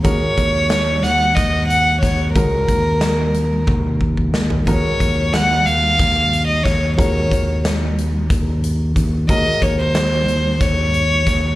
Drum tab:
HH |x-x-x-x-x-x-x-|x-x-x-x-------|x-x-x-x-x-x-x-|x-x-x-x-x-x-x-|
SD |----o-o-o---o-|----o-------o-|----o---o---o-|----o---------|
T1 |--------------|--------o-----|--------------|--------------|
FT |--------------|-------------o|--------------|--------------|
BD |o-o-----o---o-|o-o-----o-oo--|o-o-----o---o-|o-o-----o---o-|

HH |x-x-x-x-x-x-x-|
SD |----o---o---o-|
T1 |--------------|
FT |--------------|
BD |o-o-----o---o-|